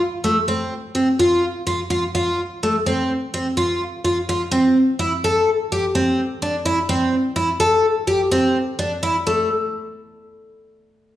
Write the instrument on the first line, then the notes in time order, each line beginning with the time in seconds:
twelve-string acoustic guitar
0.24 A3
0.48 C4
0.95 C4
1.19 F4
1.67 F4
1.90 F4
2.15 F4
2.63 A3
2.86 C4
3.34 C4
3.57 F4
4.05 F4
4.29 F4
4.51 C4
4.99 E4
5.24 A4
5.72 G4
5.95 C4
6.42 D4
6.65 E4
6.89 C4
7.36 E4
7.60 A4
8.07 G4
8.31 C4
8.79 D4
9.03 E4
9.27 A3